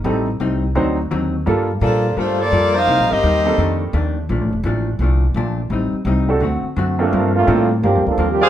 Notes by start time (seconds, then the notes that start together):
0.04 A1 A2 G3 A3 C4 D#4 A4
0.40 C2 A2 G3 C4 D#4
0.75 D2 D3 F#3 C4 D4 D#4 C5
1.11 D#2 D3 F#3 C4 D#4
1.46 G2 G3 A#3 D4 F4 A4
1.81 A#2 F3 G3 A#3 D4 F4 A4
2.17 G2 G3 A3 A#3 D4 F4 A4 C5
2.40 A#3 F4 A4 D5
2.52 F2 G3 A#3 F4 A4
2.75 D#4 A#4 C5 F5
2.87 C2 C3 G3 A#3 D#4
2.99 A#1
3.11 G1 C4 G4 A#4 D#5
3.23 D#2 C3 G3 A#3 D#4
3.46 G3 A#3 C4 D#4 A4
3.57 F2 D#3 A3 D4
3.93 D#2 F2 D#3 A3 D4
4.29 A#1 A#2 F3 A3 D4
4.41 A1
4.53 F1
4.64 A1 A#2 F3 A3 D4
4.99 C2 A#2 F3 A3
5.03 D4
5.34 A#1 A#2 F3 A3 D4
5.70 A1 A2 G3 C4 D#4
5.93 muted upright bass stroke
6.05 C2 A2 G3 C4 D#4
6.29 A3 C4 D4 F#4 A4
6.40 D2 D3 A3 C4 F#4
6.63 muted upright bass stroke
6.76 F#2 D3 A3 C4 F#4
6.99 G2 F3 A3 A#3 C4 D4 F4 A4
7.12 G2 F3 A#3 C4
7.35 A3 A#3 D4 F4
7.47 G2 A2 F3 A#3 C4 D4 F4 A4
7.83 G2 F3 A#3 C4 D4 G4
7.95 F2
8.06 D2 F3 A#3 D4 A4
8.18 D#2 G2 F3 A#3 C4
8.30 F3 A#3 D4 G4
8.41 G#4 C5 D5 F5